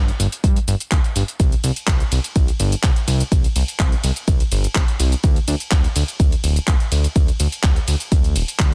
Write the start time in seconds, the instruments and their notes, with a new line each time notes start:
Already playing: analog synth bass G1
0.08 closed hi-hat, shaker
0.20 analog synth bass G1, open hi-hat, shaker
0.32 closed hi-hat, shaker
0.44 analog synth bass G2, kick, closed hi-hat, shaker
0.56 closed hi-hat, shaker
0.68 analog synth bass G1, open hi-hat, shaker
0.80 closed hi-hat, shaker
0.91 analog synth bass D2, kick, clap, closed hi-hat, shaker
1.04 closed hi-hat, shaker
1.16 analog synth bass G1, open hi-hat, shaker
1.28 closed hi-hat, shaker
1.40 analog synth bass C2, kick, closed hi-hat, ride, shaker
1.52 closed hi-hat, shaker
1.64 analog synth bass C2, open hi-hat, ride, shaker
1.76 closed hi-hat, shaker
1.87 analog synth bass C2, kick, clap, closed hi-hat, shaker
2.00 closed hi-hat, shaker
2.12 analog synth bass C2, open hi-hat, ride, shaker
2.24 closed hi-hat, shaker
2.36 analog synth bass C2, kick, closed hi-hat, ride, shaker
2.48 closed hi-hat, shaker
2.60 analog synth bass G1, open hi-hat, ride, shaker
2.72 closed hi-hat, shaker
2.83 analog synth bass C2, kick, clap, closed hi-hat, ride, shaker
2.96 closed hi-hat, shaker
3.08 analog synth bass C2, open hi-hat, ride, shaker
3.20 closed hi-hat, shaker
3.32 analog synth bass C2, kick, closed hi-hat, ride, shaker
3.44 closed hi-hat, shaker
3.56 analog synth bass C2, open hi-hat, ride, shaker
3.68 closed hi-hat, shaker
3.79 analog synth bass C2, kick, clap, closed hi-hat, shaker
3.92 closed hi-hat, shaker
4.04 analog synth bass C2, open hi-hat, ride, shaker
4.16 closed hi-hat, shaker
4.28 analog synth bass C2, kick, closed hi-hat, ride, shaker
4.40 closed hi-hat, shaker
4.52 analog synth bass G1, open hi-hat, ride, shaker
4.64 closed hi-hat, shaker
4.75 analog synth bass C2, kick, clap, closed hi-hat, shaker
4.88 closed hi-hat, shaker
5.00 analog synth bass C2, open hi-hat, ride, shaker
5.12 closed hi-hat, shaker
5.24 analog synth bass D2, kick, closed hi-hat, ride, shaker
5.36 closed hi-hat, shaker
5.48 analog synth bass D2, open hi-hat, ride, shaker
5.60 closed hi-hat, shaker
5.71 analog synth bass D2, kick, clap, closed hi-hat, ride, shaker
5.84 closed hi-hat, shaker
5.96 analog synth bass D2, open hi-hat, ride, shaker
6.08 closed hi-hat, shaker
6.20 analog synth bass D2, kick, closed hi-hat, ride, shaker
6.32 closed hi-hat, shaker
6.44 analog synth bass D1, open hi-hat, ride, shaker
6.56 closed hi-hat, shaker
6.67 analog synth bass D2, kick, clap, closed hi-hat, ride, shaker
6.80 closed hi-hat, shaker
6.92 analog synth bass D2, open hi-hat, ride, shaker
7.04 closed hi-hat, shaker
7.16 analog synth bass D2, kick, closed hi-hat, ride, shaker
7.28 closed hi-hat, shaker
7.40 analog synth bass D2, open hi-hat, ride, shaker
7.52 closed hi-hat, shaker
7.63 analog synth bass D2, kick, clap, closed hi-hat, shaker
7.76 closed hi-hat, shaker
7.88 analog synth bass D2, open hi-hat, ride, shaker
8.00 closed hi-hat, shaker
8.12 analog synth bass D2, kick, closed hi-hat, ride, shaker
8.24 closed hi-hat, shaker
8.36 analog synth bass D1, open hi-hat, ride, shaker
8.48 closed hi-hat, shaker
8.59 analog synth bass D2, kick, clap, closed hi-hat, ride, shaker